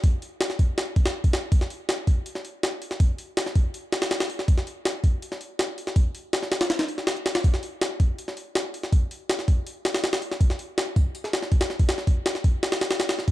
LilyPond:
\new DrumStaff \with { instrumentName = "Drums" } \drummode { \time 4/4 \tempo 4 = 162 <hho bd>8 hho8 <hho sn>16 sn16 <hho bd>8 <hho sn>8 <hho bd>16 <hho sn>16 r16 <hho bd>16 <hho sn>8 | <hho bd>16 sn16 hho8 <hho sn>8 <hho bd>8 hho16 sn16 hho8 <hho sn>8 hho16 sn16 | <hho bd>8 hho8 <hho sn>16 sn16 <hho bd>8 hho8 <hho sn>16 <hho sn>16 <hho sn>16 <hho sn>16 hho16 sn16 | <hho bd>16 sn16 hho8 <hho sn>8 <hho bd>8 hho16 sn16 hho8 <hho sn>8 hho16 sn16 |
<hho bd>8 hho8 <hho sn>16 sn16 <hho sn>16 <hho sn>16 <hho sn>16 <hho sn>16 hho16 sn16 <hho sn>16 hh16 <hho sn>16 <hho sn>16 | <hho bd>16 sn16 hho8 <hho sn>8 <hho bd>8 hho16 sn16 hho8 <hho sn>8 hho16 sn16 | <hho bd>8 hho8 <hho sn>16 sn16 <hho bd>8 hho8 <hho sn>16 <hho sn>16 <hho sn>16 <hho sn>16 hho16 sn16 | <hho bd>16 sn16 hho8 <hho sn>8 <hho bd>8 hho16 sn16 <hho sn>16 sn16 <hho bd>16 <hho sn>16 sn16 <hho bd>16 |
<hho sn>16 sn16 <hho bd>8 <hho sn>16 sn16 <hho bd>8 <hho sn>16 <hho sn>16 <hho sn>16 <hho sn>16 <hho sn>16 <hho sn>16 sn16 <hho bd>16 | }